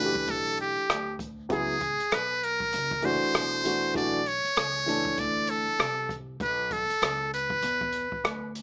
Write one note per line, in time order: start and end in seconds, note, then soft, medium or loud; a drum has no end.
0.00 0.25 F#1 medium
0.00 0.84 E3 medium
0.00 0.84 A3 medium
0.00 0.85 D4 medium
0.00 0.32 B4 loud
0.05 0.88 G4 medium
0.15 kick medium
0.28 0.75 B1 medium
0.28 0.60 A4 medium
0.28 kick medium
0.28 closed hi-hat medium
0.57 1.17 G4 medium
0.57 closed hi-hat medium
0.78 muted upright bass stroke soft
0.90 1.48 D2 medium
0.90 cross-stick loud
0.90 closed hi-hat medium
1.19 kick medium
1.19 closed hi-hat medium
1.49 1.97 C#2 loud
1.49 1.73 F#3 medium
1.49 1.73 B3 medium
1.49 1.74 E4 medium
1.49 1.74 G#4 medium
1.49 kick loud
1.49 closed hi-hat medium
1.53 2.15 G#4 medium
1.81 kick medium
1.81 closed hi-hat medium
2.00 muted upright bass stroke soft
2.00 closed hi-hat soft
2.11 2.70 B1 medium
2.11 2.45 B4 medium
2.11 cross-stick loud
2.11 closed hi-hat medium
2.43 3.06 A#4 medium
2.43 closed hi-hat medium
2.60 kick medium
2.73 3.20 F#1 loud
2.73 closed hi-hat medium
2.91 kick medium
3.02 3.62 E3 medium
3.02 3.63 A3 medium
3.02 3.64 D4 medium
3.02 3.65 F#4 medium
3.02 3.96 C5 loud
3.02 closed hi-hat medium
3.23 muted upright bass stroke soft
3.34 3.92 E1 medium
3.34 cross-stick loud
3.34 closed hi-hat medium
3.64 3.93 E3 medium
3.64 3.94 A3 medium
3.64 3.95 D4 medium
3.64 3.95 F#4 medium
3.64 closed hi-hat medium
3.94 4.42 B1 loud
3.94 4.18 E3 medium
3.94 4.19 A3 medium
3.94 4.19 D4 medium
3.94 4.20 F#4 medium
3.94 4.29 D5 loud
3.94 kick loud
3.94 closed hi-hat medium
4.26 5.21 C#5 loud
4.26 closed hi-hat medium
4.44 muted upright bass stroke soft
4.44 closed hi-hat soft
4.56 5.15 C#2 medium
4.56 cross-stick loud
4.56 closed hi-hat medium
4.86 5.74 E3 medium
4.86 5.74 A3 medium
4.86 5.74 D4 medium
4.86 5.75 A4 medium
4.86 closed hi-hat medium
5.05 kick medium
5.18 5.65 D2 medium
5.18 5.51 D5 loud
5.18 kick medium
5.18 closed hi-hat medium
5.47 6.15 A4 medium
5.47 closed hi-hat medium
5.67 muted upright bass stroke soft
5.79 6.37 C2 medium
5.79 cross-stick loud
5.79 closed hi-hat medium
6.09 kick medium
6.09 closed hi-hat medium
6.40 6.87 B1 loud
6.40 6.74 B4 medium
6.40 kick loud
6.40 closed hi-hat medium
6.71 7.33 A4 medium
6.71 kick medium
6.71 closed hi-hat medium
6.90 muted upright bass stroke soft
6.90 closed hi-hat medium
7.02 7.60 C#2 medium
7.02 cross-stick loud
7.02 closed hi-hat medium
7.34 8.51 B4 medium
7.34 closed hi-hat medium
7.50 kick medium
7.62 8.09 E2 medium
7.62 closed hi-hat medium
7.81 kick medium
7.92 closed hi-hat medium
8.12 muted upright bass stroke soft
8.12 kick medium
8.24 8.62 D2 medium
8.24 cross-stick loud
8.24 closed hi-hat medium
8.55 closed hi-hat medium